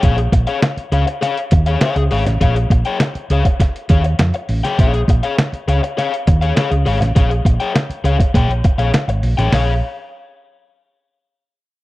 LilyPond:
<<
  \new Staff \with { instrumentName = "Overdriven electric guitar" } { \time 4/4 \key bes \dorian \tempo 4 = 101 <aes' des'' f''>16 r8 <aes' des'' f''>16 r8 <aes' des'' f''>16 r16 <aes' des'' f''>16 r8 <aes' des'' f''>16 <aes' des'' f''>16 r16 <aes' des'' f''>16 r16 | <aes' des'' f''>16 r8 <aes' des'' g''>16 r8 <aes' des'' f''>16 r8. <aes' des'' f''>16 r4 <aes' des'' g''>16 | <aes' des'' f''>16 r8 <aes' des'' f''>16 r8 <aes' des'' f''>16 r16 <aes' des'' f''>16 r8 <aes' des'' f''>16 <aes' des'' f''>16 r16 <aes' des'' f''>16 r16 | <aes' des'' f''>16 r8 <aes' des'' g''>16 r8 <aes' des'' f''>16 r16 <aes' des'' g''>16 r8 <aes' des'' f''>16 r8. <aes' des'' g''>16 |
<aes' des'' f''>16 r2. r8. | }
  \new Staff \with { instrumentName = "Fingered electric bass" } { \clef bass \time 4/4 \key bes \dorian bes,,8 bes,,16 r8. des,16 r8. ees,8 r16 des,16 aes,,16 a,,16 | bes,,8 bes,,16 r8. des,16 r8. ees,8 f,16 r16 a,,16 r16 | bes,,8 bes,,16 r8. des,16 r8. ees,8 r16 des,16 aes,,16 a,,16 | bes,,8 bes,,16 r8. des,16 r16 bes,16 bes,,16 r16 bes,,16 r16 aes,,16 bes,,16 a,,16 |
bes,,8 r2. r8 | }
  \new DrumStaff \with { instrumentName = "Drums" } \drummode { \time 4/4 <hh bd>16 hh16 <hh bd>16 hh16 <hh sn>16 hh16 hh16 hh16 <hh sn>16 hh16 <hh bd>16 hh16 <hh sn>16 hh16 hho16 <hh sn>16 | <hh bd>16 hh16 <hh bd>16 hh16 <hh sn>16 hh16 hh16 <hh bd>16 <hh bd sn>16 hh16 <hh bd>16 hh16 <hh sn>16 hh16 hho16 <hh sn>16 | <hh bd>16 hh16 <hh bd>16 hh16 <hh sn>16 hh16 hh16 hh16 <hh sn>16 hh16 <hh bd>16 hh16 <hh sn>16 hh16 hho16 <hh sn>16 | <hh bd>16 hh16 <hh bd>16 hh16 <hh sn>16 hh16 hh16 <hh bd>16 <hh bd sn>16 hh16 <hh bd>16 hh16 <hh sn>16 hh16 hho16 <hh sn>16 |
<hho sn>4 r4 r4 r4 | }
>>